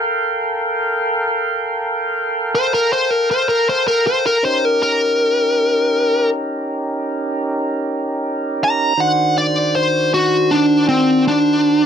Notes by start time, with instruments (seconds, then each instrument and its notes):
Already playing: tonewheel organ A4 A#4 F5 G5
2.55 lead electric guitar C5
2.74 lead electric guitar A#4
2.93 lead electric guitar C5
3.11 lead electric guitar A#4
3.31 lead electric guitar C5
3.49 lead electric guitar A#4
3.69 lead electric guitar C5
3.88 lead electric guitar A#4
4.07 lead electric guitar C5
4.26 lead electric guitar A#4
4.43 tonewheel organ C#4 D#4 G4 A#4, lead electric guitar C5
4.65 lead electric guitar A#4
4.83 lead electric guitar A#4
8.64 lead electric guitar A#5
8.97 tonewheel organ D#3 D4 F#4 C5, lead electric guitar F#5
9.38 lead electric guitar D5
9.75 lead electric guitar C5
10.14 lead electric guitar F#4
10.51 lead electric guitar D4
10.89 lead electric guitar C4
11.28 lead electric guitar D4